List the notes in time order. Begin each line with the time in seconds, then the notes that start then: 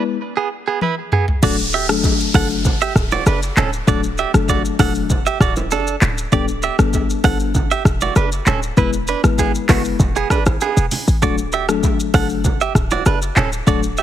Already playing: G#3 B3 E4 B4
0.37 B3 G#4
0.68 B3 G#4
0.81 E4 B4, high tom
1.12 B3 G#4, mid tom
1.28 floor tom
1.43 D1 F#3 A3 D4 F#4 A4 D5, kick, crash, downlifter, low conga, shaker
1.58 shaker
1.73 G4 E5, shaker
1.89 F#1 F#3 A3 D4 A4, cross-stick, shaker
2.04 kick, high bongo, shaker
2.20 shaker
2.34 F#1 F#3 A3 D4 A4 F#5, kick, cross-stick, open hi-hat, low bongo
2.50 shaker
2.65 kick, low bongo, low conga, shaker
2.81 G4 E5, shaker
2.96 D1, kick, cross-stick, high bongo, shaker
3.11 F#4 D5, low bongo, shaker
3.26 F#1 D4 B4, cross-stick, high bongo, shaker
3.43 shaker
3.57 D1 C#4 A4, clap, low conga, shaker
3.73 shaker
3.87 D1 F#3 A3 D4 F#4 A4 D5, kick, low conga, shaker
4.04 shaker
4.18 G4 E5, shaker
4.34 F#1 F#3 A3 D4 A4, cross-stick, shaker
4.49 F#4 D5, kick, high bongo, shaker
4.65 shaker
4.79 E1 F#3 A3 D4 A4 F#5, kick, cross-stick, open hi-hat, low bongo
4.95 shaker
5.10 kick, low bongo, low conga, shaker
5.26 G4 E5, shaker
5.40 D1 F#4 D5, kick, cross-stick, high bongo, shaker
5.56 low bongo, shaker
5.71 F#1 D4 A4, high bongo, shaker
5.87 shaker
6.02 D1, clap, low conga, shaker
6.18 shaker
6.32 D1 G3 B3 D4 G4 A4 D5, kick, low conga, shaker
6.48 shaker
6.62 G4 E5, shaker
6.79 G1 G3 B3 D4 A4, cross-stick, shaker
6.93 kick, high bongo, shaker
7.10 shaker
7.24 G1 G3 B3 D4 A4 F#5, kick, cross-stick, open hi-hat, low bongo
7.40 shaker
7.55 kick, low bongo, low conga, shaker
7.71 G4 E5, shaker
7.85 E1, kick, cross-stick, high bongo, shaker
8.01 F#4 D5, low bongo, shaker
8.16 F#1 D4 B4, cross-stick, high bongo, shaker
8.32 shaker
8.46 D1 C#4 A4, clap, low conga, shaker
8.63 shaker
8.77 E1 G#3 B3 E4 B4, kick, low conga, shaker
8.93 shaker
9.07 D4 B4, shaker
9.23 G#1 G#3 B3 E4 B4, cross-stick, shaker
9.38 B3 G#4, kick, high bongo, shaker
9.55 shaker
9.69 F#1 G#3 A3 B3 E4 F#4 B4, kick, cross-stick, clap, open hi-hat, low bongo, shaker
9.85 shaker
10.00 E1, kick, low bongo, low conga, shaker
10.16 B3 G#4, shaker
10.30 D4 B4, kick, cross-stick, high bongo, shaker
10.46 G#1, cross-stick, low bongo, shaker
10.61 B3 G#4, high bongo, shaker
10.77 E1, shaker
10.91 open hi-hat, low conga, shaker
11.08 A1, shaker
11.22 D1 F#3 A3 D4 F#4 A4 D5, kick, low conga, shaker
11.38 shaker
11.52 G4 E5, shaker
11.69 F#1 F#3 A3 D4 A4, cross-stick, shaker
11.83 kick, high bongo, shaker
12.00 shaker
12.14 F#1 F#3 A3 D4 A4 F#5, kick, cross-stick, open hi-hat, low bongo
12.30 shaker
12.44 kick, low bongo, low conga, shaker
12.61 G4 E5, shaker
12.75 D1, kick, cross-stick, high bongo, shaker
12.91 F#4 D5, low bongo, shaker
13.06 F#1 D4 B4, cross-stick, high bongo, shaker
13.22 shaker
13.36 D1 C#4 A4, clap, low conga, shaker
13.53 shaker
13.67 D1 F#3 A3 D4 F#4 A4 D5, kick, low conga, shaker
13.83 shaker
13.97 G4 E5, shaker